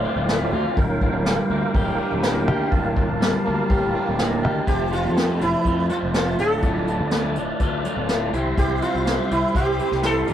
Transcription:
Already playing: A2 D3 A3 F4 C5 D5 F5
0.05 C4
0.16 D1, high conga
0.28 A3, snare, open hi-hat
0.41 high conga
0.52 D2 F4, low conga
0.77 D1 G2 A#4 F5 G5, kick, open hi-hat
0.89 high conga
1.01 D3, kick, high conga
1.12 D1
1.26 G3, snare, open hi-hat
1.50 D2 A#3, low conga
1.74 D1 G4, kick, open hi-hat, high conga
1.98 D4
2.11 D1, high conga
2.22 A#3, snare, open hi-hat
2.36 high conga
2.48 D2 G4, low conga
2.71 D1 G2 A5, kick, open hi-hat
2.84 high conga
2.96 D3, kick, high conga
3.08 D1, low conga
3.21 G3, snare, open hi-hat
3.46 D2 A#3, low conga
3.70 D1 G4, kick, open hi-hat, high conga
3.94 D4
4.07 D1, high conga
4.19 A#3, snare, open hi-hat, high conga
4.31 high conga
4.43 D2 G4, low conga
4.56 low conga
4.66 F1 F2 C3 F3 A3 C4 F4 G4 C5 A5, kick, closed hi-hat
4.81 high conga
4.91 F3 A3 C4 F4, closed hi-hat, low conga
5.05 F2
5.15 F2 C3 F3 A3 C4 F4, snare, closed hi-hat
5.29 high conga
5.40 F1 F3 A3 C4 E4 F4, closed hi-hat, low conga
5.65 F2 F3 A3 C4 F4, kick, closed hi-hat
5.89 F2 C3 F3 A3 C4 F4, closed hi-hat, high conga
6.03 F1
6.14 F3 A3 C4 F4, snare, closed hi-hat
6.38 D1 D2 A2 D3 A3 F4 A4 D5, closed hi-hat, low conga
6.62 D1 D2 A2 D3 A3 F4, kick, closed hi-hat
6.76 high conga
6.87 D3 A3 F4, closed hi-hat, low conga
6.99 D2
7.11 D2 A2 D3 A3 F4, snare, closed hi-hat
7.23 high conga
7.36 D1 D3 A3 F4, closed hi-hat, low conga
7.60 D2 A2 D3 A3 F4, kick, closed hi-hat
7.85 D2 A2 D3 A3 F4, closed hi-hat, high conga
7.96 D1
8.09 A2 D3 A3 F4, snare, closed hi-hat
8.33 C2 C3 G3 C4 E4 G4 C5 E5 C6, closed hi-hat, low conga
8.46 high conga
8.57 C2 C3 G3 C4 E4 G4 C5, kick, closed hi-hat
8.70 high conga
8.81 C4 E4 F4 G4 C5, closed hi-hat, low conga
8.94 C2
9.06 C3 G3 C4 E4 G4 C5, snare, closed hi-hat
9.19 high conga
9.30 C2 C4 E4 G4 C5, closed hi-hat, low conga
9.54 C2 C4 E4 G4 C5, kick, closed hi-hat
9.78 C3 G3 C4 E4 G4 C5, closed hi-hat, high conga
9.91 C2, snare
10.03 C4 E4 G4 A4 C5, snare, closed hi-hat
10.26 D1 A#2 F3 A#3 D4 F4 A#4 D5 F5, closed hi-hat, low conga

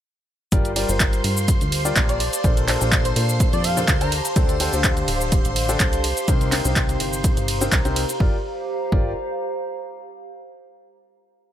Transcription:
0.52 G1 G3 F4 G4 A#4 C5 D5 C6, kick, closed hi-hat, shaker
0.62 F5, closed hi-hat, shaker
0.76 G3 F4 G4 A#4 D5, open hi-hat, ride
0.82 C5
0.89 G1 G3 F4 G4 A#4 C5, shaker
1.00 kick, clap, closed hi-hat, shaker
1.13 closed hi-hat, shaker
1.24 G2 A5, open hi-hat, ride
1.37 shaker
1.48 kick, closed hi-hat, shaker
1.61 D2, closed hi-hat, shaker
1.72 open hi-hat, ride
1.85 G3 F4 G4 A#4 D5, shaker
1.96 A#1 F4 G4 A#4, kick, clap, closed hi-hat, shaker
2.09 D5, closed hi-hat, shaker
2.20 D5, open hi-hat, ride
2.33 D5, closed hi-hat, shaker
2.44 A#1 A#2 D4 A4 A#4 C5, kick, closed hi-hat, shaker
2.57 closed hi-hat, shaker
2.68 A#2 D4 A4 A#4 C5, clap, open hi-hat, ride
2.81 A#1 A#2 D4 A4 A#4 C5, shaker
2.92 kick, clap, closed hi-hat, shaker
3.05 C5, closed hi-hat, shaker
3.16 A#2 C5, open hi-hat, ride
3.29 shaker
3.40 kick, closed hi-hat, shaker
3.53 F2 D5, closed hi-hat, shaker
3.64 F5, open hi-hat, ride
3.77 A#2 D4 A4 A#4 C5, shaker
3.88 D2, kick, clap, closed hi-hat, shaker
4.01 D3 D4 A4 A#4 C5 A#5, closed hi-hat, shaker
4.12 open hi-hat, ride
4.25 closed hi-hat, shaker
4.36 D2 D3 D4 G4 A4 C5, kick, closed hi-hat, shaker
4.49 closed hi-hat, shaker
4.60 D3 D4 G4 A4 C5, open hi-hat, ride
4.73 D2 D3 D4 G4 A4 C5, shaker
4.84 kick, clap, closed hi-hat, shaker
4.97 closed hi-hat, shaker
5.08 D1, open hi-hat, ride
5.21 shaker
5.32 kick, closed hi-hat, shaker
5.45 A1, closed hi-hat, shaker
5.56 open hi-hat, ride
5.69 D3 D4 G4 A4 C5, shaker
5.80 C2 D4, kick, clap, closed hi-hat, shaker
5.93 closed hi-hat, shaker
6.04 open hi-hat, ride
6.17 closed hi-hat, shaker
6.28 C2 C3 D#4 G4 A#4 C5, kick, closed hi-hat, shaker
6.41 closed hi-hat, shaker
6.52 C3 D#4 G4 A#4 C5, clap, open hi-hat, ride
6.65 C2 C3 D#4 G4 A#4 C5, shaker
6.76 kick, clap, closed hi-hat, shaker
6.84 A#5
6.89 closed hi-hat, shaker
7.00 G1, open hi-hat, ride
7.13 shaker
7.24 kick, closed hi-hat, shaker
7.37 G1, closed hi-hat, shaker
7.48 open hi-hat, ride
7.61 C3 D#4 G4 A#4 C5, shaker
7.72 C2, kick, clap, closed hi-hat, shaker
7.85 C3 D#4 G4 A#4 C5, closed hi-hat, shaker
7.96 open hi-hat, ride
8.09 closed hi-hat, shaker
8.20 G1 F4 G4 A#4 D5, kick
8.28 C5
8.35 F5
8.42 A#5
8.92 G1 F4 G4 A#4 D5, kick

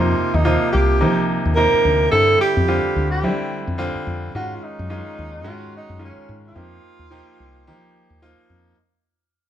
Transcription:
Already playing: F2 C3 F3 A#3 D#4 F4
0.34 D#2 D#4
0.45 C3 F3 A#3 F4
0.72 C2 G4
1.01 C3 F3 A#3 D#4
1.45 D#2
1.55 C3 F3 A#3 D#4 A#4
1.74 muted fretless electric bass stroke
1.85 D2
2.12 G2 D3 G3 C4 E4 A4
2.41 G4
2.57 F2
2.68 D3 G3 C4 F4
2.96 D2
3.11 G4
3.23 D3 G3 C4 E4
3.67 F2
3.78 D3 G3 C4 F4
3.95 muted fretless electric bass stroke
4.07 F2
4.35 G#2 D#3 G#3 C#4 F4 F#4
4.56 F4
4.63 D#4
4.79 F#2
4.89 D#3 G#3 C#4 F4
5.19 D#2
5.44 G#2 D#3 G#3 C#4 F#4
5.48 F4
5.77 D#4
5.89 F#2
5.99 D#3 G#3 C#4 F4
6.05 C#4
6.17 muted fretless electric bass stroke
6.29 G#2
6.47 F4
6.55 F2 F3 A#3 D#4 G4
6.99 D#2
7.11 F3 A#3 D#4 G4
7.40 C2
7.67 F3 A#3 D#4 G4
8.10 D#2
8.22 F3 A#3 D#4 F4
8.50 F2

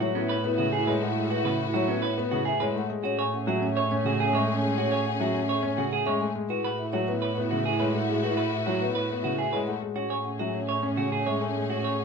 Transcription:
Already playing: A2 E4 F#4
0.00 F#3 F#4 C#5
0.15 B3 C#4 E4 B4
0.29 B4 C#5
0.44 B3 E4 B4
0.58 C#3 F#4 F#5
0.73 G#4 E5
0.78 E4
0.87 G#3 B4 C#5
1.02 A3 F#5
1.08 E4
1.16 G#3 G#4
1.30 F#4 B4
1.38 E4
1.45 C#3 B4 F#5
1.61 E5
1.68 E4
1.74 F#3 F#4 C#5
1.88 B3 C#4 B4
1.99 E4 B4
2.05 C#5
2.17 B3 B4
2.28 E4 F#4
2.33 C#3 F#5
2.45 G#4 E5
2.58 G#3 E4 B4 C#5
2.76 A3 F#5
2.90 G#3 G#4
3.04 A2 C#4 F#4 G#4 C#5
3.19 C#5 G#5
3.34 C#4 F#5
3.47 F#3 F#4 E5
3.61 C#4 C#5
3.77 C#5 E5
3.91 C#4 C#5
4.05 C#3 F#4 G#5
4.20 G#4 F#5
4.24 C#4
4.33 G#3 C#5 E5
4.47 A3 G#5
4.55 C#4
4.63 G#3 G#4
4.78 F#4 C#5
4.84 C#4
4.92 C#5 G#5
5.06 F#5
5.15 C#4
5.20 F#3 F#4 E5
5.34 C#4 C#5
5.44 C#4
5.49 C#5 E5
5.63 C#4 C#5
5.74 C#4 G#5
5.78 C#3 F#4
5.91 G#4 F#5
6.05 G#3 C#4 C#5 E5
6.21 A3 G#5
6.35 G#3 G#4
6.49 A2 E4 F#4 B4
6.64 B4 F#5
6.78 E4 E5
6.93 F#3 F#4 C#5
7.08 B3 E4 B4
7.22 B4 C#5
7.36 B3 B4
7.40 E4
7.51 C#3 F#4 F#5
7.65 G#4 E5
7.70 E4
7.79 G#3 B4 C#5
7.95 A3 F#5
8.00 E4
8.09 G#3 G#4
8.23 F#4 B4
8.30 E4
8.37 B4 F#5
8.53 E5
8.61 E4
8.66 F#3 F#4 C#5
8.81 B3 B4
8.90 E4
8.95 B4 C#5
9.10 B3 B4
9.21 E4 F#4 F#5
9.25 C#3
9.38 G#4 E5
9.52 G#3 E4 B4 C#5
9.67 A3 F#5
9.81 G#3 G#4
9.96 A2 C#4 F#4 G#4 C#5
10.09 C#5 G#5
10.24 C#4 F#5
10.39 F#3 F#4 E5
10.54 C#4 C#5
10.68 C#5 E5
10.83 C#4 C#5
10.88 C#4
10.97 C#3 F#4 G#5
11.12 G#4 F#5
11.18 C#4
11.26 G#3 C#5 E5
11.41 A3 G#5
11.48 C#4
11.56 G#3 G#4
11.70 F#4 C#5
11.78 C#4
11.84 C#5 G#5
11.99 F#5

